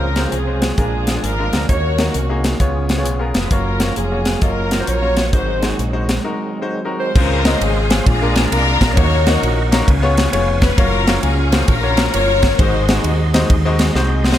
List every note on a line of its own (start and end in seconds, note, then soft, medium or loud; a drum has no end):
0.00 0.25 C#2 loud
0.00 0.58 C#3 medium
0.00 0.77 F3 medium
0.00 0.77 C4 medium
0.00 0.32 F4 medium
0.00 0.77 F4 soft
0.00 1.67 G#4 medium
0.00 0.28 A#4 medium
0.00 0.32 A#4 medium
0.16 0.36 G#3 medium
0.16 0.36 C#4 medium
0.16 0.36 F4 medium
0.16 0.36 C5 medium
0.16 snare medium
0.16 closed hi-hat medium
0.27 0.32 G4 medium
0.31 0.71 C2 medium
0.31 0.75 C4 medium
0.31 0.75 F4 medium
0.31 0.77 G#4 medium
0.31 0.76 G#4 medium
0.31 closed hi-hat medium
0.47 0.72 G#3 medium
0.47 0.72 C#4 medium
0.47 0.72 F4 medium
0.47 0.72 C5 medium
0.62 snare loud
0.62 closed hi-hat medium
0.77 1.17 A#1 medium
0.77 1.49 A#2 soft
0.77 1.68 F3 medium
0.77 1.09 G#3 medium
0.77 1.68 A#3 soft
0.77 1.68 D4 medium
0.77 1.09 D4 medium
0.77 1.23 D4 medium
0.77 1.09 F4 medium
0.77 1.24 F4 medium
0.77 1.20 G#4 medium
0.77 1.25 G#4 medium
0.77 1.10 A#4 medium
0.77 kick medium
0.77 closed hi-hat medium
1.07 snare medium
1.07 closed hi-hat medium
1.15 1.30 G#3 medium
1.15 1.30 D4 medium
1.15 1.30 F4 medium
1.15 1.31 G#4 medium
1.23 1.49 G#1 medium
1.23 1.66 D4 medium
1.23 1.67 F4 medium
1.23 1.66 A#4 medium
1.23 1.68 A#4 medium
1.23 closed hi-hat medium
1.38 1.63 G#3 medium
1.38 1.63 D4 medium
1.38 1.63 F4 medium
1.38 1.63 A#4 medium
1.53 1.66 D2 medium
1.53 snare medium
1.53 closed hi-hat medium
1.69 2.08 D#2 medium
1.69 2.59 D#3 medium
1.69 2.41 D#3 medium
1.69 1.91 A#3 medium
1.69 2.59 A#3 soft
1.69 3.50 C#4 medium
1.69 1.91 D#4 medium
1.69 2.60 F#4 medium
1.69 1.91 F#4 medium
1.69 2.57 F#4 medium
1.69 2.57 A#4 medium
1.69 2.11 C#5 loud
1.69 1.91 C#5 medium
1.69 2.15 C#5 medium
1.69 kick medium
1.69 closed hi-hat medium
1.98 2.18 A#3 medium
1.98 2.18 D#4 medium
1.98 2.18 F#4 medium
1.98 2.18 A#4 medium
1.98 snare loud
1.98 closed hi-hat medium
2.14 2.53 C2 medium
2.14 closed hi-hat medium
2.29 2.54 A#3 medium
2.29 2.54 D#4 medium
2.29 2.54 F#4 medium
2.29 2.54 G#4 medium
2.44 snare loud
2.44 closed hi-hat medium
2.60 3.06 C#2 medium
2.60 3.32 C#3 medium
2.60 2.91 B3 medium
2.60 3.50 B3 medium
2.60 2.92 F4 medium
2.60 5.31 F4 medium
2.60 2.92 G#4 medium
2.60 3.51 G#4 medium
2.60 2.92 C#5 medium
2.60 kick medium
2.60 closed hi-hat medium
2.89 snare medium
2.89 closed hi-hat medium
2.97 3.13 B3 medium
2.97 3.13 F4 medium
2.97 3.13 G#4 medium
2.97 3.13 C#5 medium
3.06 3.31 B1 medium
3.06 closed hi-hat medium
3.19 3.45 B3 medium
3.19 3.45 F4 medium
3.19 3.45 G#4 medium
3.19 3.45 A#4 medium
3.34 3.49 F1 medium
3.34 3.50 B4 medium
3.34 3.53 B4 medium
3.34 snare loud
3.34 closed hi-hat medium
3.51 3.90 F#1 medium
3.51 7.12 F#3 medium
3.51 3.73 A#3 medium
3.51 5.32 A#3 soft
3.51 5.32 C#4 medium
3.51 3.97 C#4 medium
3.51 3.73 F4 medium
3.51 3.97 F4 medium
3.51 3.73 F#4 medium
3.51 3.98 A#4 medium
3.51 3.97 A#4 medium
3.51 3.74 C#5 medium
3.51 kick loud
3.51 closed hi-hat medium
3.80 4.00 A#3 medium
3.80 4.00 F4 medium
3.80 4.00 F#4 medium
3.80 4.01 C#5 medium
3.80 snare loud
3.80 closed hi-hat medium
3.96 4.36 F1 medium
3.96 4.42 C#4 soft
3.96 4.42 F4 medium
3.96 4.42 G#4 medium
3.96 4.43 G#4 medium
3.96 closed hi-hat medium
4.11 4.36 A#3 medium
4.11 4.36 F4 medium
4.11 4.36 F#4 medium
4.11 4.36 C#5 medium
4.25 snare medium
4.25 closed hi-hat medium
4.42 4.81 F#1 medium
4.42 4.73 A#3 medium
4.42 5.30 C#4 medium
4.42 4.74 F4 medium
4.42 4.87 F4 medium
4.42 4.74 F#4 medium
4.42 4.90 A#4 medium
4.42 4.87 A#4 medium
4.42 4.74 D#5 medium
4.42 kick medium
4.42 closed hi-hat medium
4.71 snare medium
4.71 closed hi-hat medium
4.79 4.95 A#3 medium
4.79 4.95 F4 medium
4.79 4.95 F#4 medium
4.79 4.95 C5 medium
4.87 5.33 A#1 medium
4.87 5.31 F4 medium
4.87 5.31 A#4 medium
4.87 5.34 C#5 loud
4.87 5.35 C#5 loud
4.87 closed hi-hat medium
5.02 5.27 A#3 medium
5.02 5.27 F4 medium
5.02 5.27 F#4 medium
5.02 5.27 C#5 medium
5.17 snare medium
5.17 closed hi-hat medium
5.32 5.72 G#1 medium
5.32 6.05 G#2 medium
5.32 7.13 D#3 medium
5.32 7.13 G#3 soft
5.32 5.55 G#3 medium
5.32 7.13 C4 soft
5.32 5.55 D#4 medium
5.32 6.21 D#4 medium
5.32 5.55 F#4 medium
5.32 6.21 F#4 medium
5.32 5.55 C5 medium
5.32 5.79 C5 medium
5.32 5.76 C5 medium
5.32 kick loud
5.32 closed hi-hat medium
5.62 5.82 G#3 medium
5.62 5.82 D#4 medium
5.62 5.82 F#4 medium
5.62 5.82 G#4 medium
5.62 snare medium
5.62 closed hi-hat medium
5.79 6.18 A#1 medium
5.79 closed hi-hat medium
5.93 6.18 G#3 medium
5.93 6.18 D#4 medium
5.93 6.18 F#4 medium
5.93 6.18 C5 medium
6.09 snare loud
6.09 closed hi-hat medium
6.24 6.56 G#3 medium
6.24 6.56 D#4 medium
6.24 6.56 F#4 medium
6.24 6.56 A#4 medium
6.62 6.77 G#3 medium
6.62 6.77 D#4 medium
6.62 6.77 F#4 medium
6.62 6.77 C5 medium
6.85 7.09 G#3 medium
6.85 7.09 D#4 medium
6.85 7.10 F#4 medium
6.85 7.10 A#4 medium
6.99 7.14 C5 medium
6.99 7.15 C5 medium
7.15 7.54 C#2 loud
7.15 7.86 C#3 medium
7.15 7.37 G#3 medium
7.15 7.37 C4 medium
7.15 7.37 C#4 medium
7.15 7.37 F4 medium
7.15 7.61 F4 medium
7.15 8.06 G#4 medium
7.15 7.61 A#4 medium
7.15 7.37 C5 medium
7.15 8.06 C5 medium
7.15 8.96 F5 medium
7.15 8.06 C6 medium
7.15 kick loud
7.15 crash loud
7.45 7.75 G#3 medium
7.45 7.75 C4 medium
7.45 7.75 C#4 medium
7.45 7.76 F4 medium
7.45 7.76 D#5 medium
7.45 snare loud
7.45 ride medium
7.61 7.99 G#1 medium
7.61 8.04 C4 medium
7.61 8.04 F4 medium
7.61 8.06 G#4 medium
7.61 ride medium
7.90 8.06 G#3 medium
7.90 8.06 C4 medium
7.90 8.06 C#4 medium
7.90 8.06 F4 medium
7.90 8.06 G#4 medium
7.90 snare loud
7.90 ride medium
8.06 8.45 A#1 loud
8.06 8.77 A#2 medium
8.06 8.52 D4 medium
8.06 8.51 F4 medium
8.06 8.96 G#4 medium
8.06 8.49 G#4 medium
8.06 8.96 D5 medium
8.06 8.96 A#5 medium
8.06 kick loud
8.06 ride medium
8.21 8.46 G#3 medium
8.21 8.46 A#3 medium
8.21 8.46 D4 medium
8.21 8.46 F4 medium
8.21 8.46 A#4 medium
8.36 snare loud
8.36 ride medium
8.52 8.77 C2 medium
8.52 8.89 G#3 medium
8.52 8.89 A#3 medium
8.52 8.89 D4 medium
8.52 8.94 D4 medium
8.52 8.89 F4 medium
8.52 8.94 F4 medium
8.52 8.95 A#4 loud
8.52 8.89 A#4 medium
8.52 ride medium
8.81 8.97 A#1 medium
8.81 kick medium
8.81 snare loud
8.81 ride medium
8.97 9.36 D#2 loud
8.97 9.68 D#3 medium
8.97 9.19 A#3 medium
8.97 9.19 C#4 medium
8.97 9.19 D#4 medium
8.97 9.83 F#4 medium
8.97 9.19 F#4 medium
8.97 9.83 A#4 medium
8.97 9.87 A#4 medium
8.97 9.42 C#5 loud
8.97 9.19 C#5 medium
8.97 9.87 D#5 medium
8.97 9.87 F#5 medium
8.97 10.76 C#6 medium
8.97 kick loud
8.97 ride medium
9.27 9.57 A#3 medium
9.27 9.57 C#4 medium
9.27 9.57 D#4 medium
9.27 9.57 F#4 medium
9.27 9.57 D#5 medium
9.27 snare loud
9.27 ride medium
9.43 9.81 A#1 loud
9.43 ride medium
9.71 9.87 A#3 medium
9.71 9.88 C#4 medium
9.71 9.88 D#4 medium
9.71 9.88 F#4 medium
9.71 9.88 A#4 medium
9.71 snare loud
9.71 ride medium
9.87 10.26 C#2 loud
9.87 10.59 C#3 medium
9.87 10.77 B4 medium
9.87 12.57 F5 medium
9.87 10.77 G#5 medium
9.87 kick loud
9.87 ride medium
10.02 10.27 B3 medium
10.02 10.27 C#4 medium
10.02 10.27 F4 medium
10.02 10.27 G#4 medium
10.02 10.27 C#5 loud
10.17 snare loud
10.17 ride medium
10.32 10.71 F1 loud
10.32 10.70 B3 medium
10.32 10.70 C#4 medium
10.32 10.70 F4 medium
10.32 10.70 G#4 medium
10.32 10.70 C#5 loud
10.32 ride medium
10.61 10.77 B4 medium
10.61 kick medium
10.61 snare loud
10.61 ride medium
10.77 11.17 F#1 loud
10.77 11.00 A#3 medium
10.77 11.00 C#4 medium
10.77 11.22 C#4 medium
10.77 11.00 F4 medium
10.77 11.22 F4 medium
10.77 11.00 F#4 medium
10.77 11.23 A#4 loud
10.77 12.58 A#4 medium
10.77 11.00 C#5 loud
10.77 12.57 C#6 medium
10.77 kick loud
10.77 ride medium
11.07 11.37 F#3 medium
11.07 11.37 A#3 medium
11.07 11.37 C#4 medium
11.07 11.37 F4 medium
11.07 11.37 C#5 medium
11.07 snare loud
11.07 ride medium
11.21 11.62 C#2 medium
11.21 11.68 C#4 medium
11.21 11.68 F4 medium
11.21 11.64 G#4 medium
11.21 ride medium
11.52 11.71 A#3 medium
11.52 11.71 C#4 medium
11.52 11.72 F4 medium
11.52 11.72 F#4 medium
11.52 11.72 C5 medium
11.52 snare loud
11.52 ride medium
11.68 12.07 A#1 medium
11.68 12.55 C#4 medium
11.68 12.14 F4 medium
11.68 12.13 A#4 loud
11.68 kick loud
11.68 ride medium
11.83 12.07 A#3 medium
11.83 12.08 C#4 medium
11.83 12.08 F4 medium
11.83 12.08 F#4 medium
11.83 12.08 C#5 medium
11.97 snare loud
11.97 ride medium
12.13 12.53 G1 medium
12.13 12.51 F#3 medium
12.13 12.51 A#3 medium
12.13 12.51 C#4 medium
12.13 12.51 F4 medium
12.13 12.57 F4 medium
12.13 12.57 A#4 medium
12.13 12.59 C#5 loud
12.13 12.51 C#5 medium
12.13 ride medium
12.43 kick medium
12.43 snare loud
12.43 ride medium
12.59 12.98 G#1 loud
12.59 13.30 G#2 medium
12.59 12.81 G#3 medium
12.59 12.81 C4 medium
12.59 12.81 D#4 medium
12.59 13.47 D#4 medium
12.59 12.81 F#4 medium
12.59 13.47 F#4 medium
12.59 14.38 G#4 medium
12.59 13.05 C5 loud
12.59 12.81 C5 loud
12.59 14.38 D#5 medium
12.59 14.38 C6 medium
12.59 kick loud
12.59 ride medium
12.88 13.18 G#3 medium
12.88 13.19 C4 medium
12.88 13.19 D#4 medium
12.88 13.19 F#4 medium
12.88 13.19 G#4 medium
12.88 snare loud
12.88 ride medium
13.04 13.43 D#2 medium
13.04 ride medium
13.34 13.53 G#3 medium
13.34 13.53 C4 medium
13.34 13.53 D#4 medium
13.34 13.53 F#4 medium
13.34 13.53 C5 medium
13.34 snare loud
13.34 ride medium
13.50 13.88 D#2 loud
13.50 kick loud
13.50 ride medium
13.65 13.89 G#3 medium
13.65 13.89 C4 medium
13.65 13.89 D#4 medium
13.65 13.89 F#4 medium
13.65 13.90 D#5 loud
13.79 snare loud
13.79 ride medium
13.95 14.33 C2 medium
13.95 14.32 G#3 medium
13.95 14.32 C4 medium
13.95 14.32 D#4 medium
13.95 14.33 F#4 medium
13.95 14.33 C5 medium
13.95 snare medium
14.24 14.38 C5 medium
14.24 snare medium
14.32 snare medium